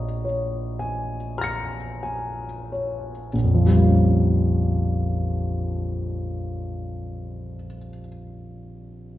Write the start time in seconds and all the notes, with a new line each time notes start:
Already playing: A#1 C#5 D#5 A#5 C#6
0.24 C#5
0.79 G#5
1.38 A#5 F6 A#6
1.44 C#7
2.03 G#5
2.72 C#5
3.33 A#1
3.44 F2
3.54 F3
3.66 G3
3.77 A#3
3.86 C#4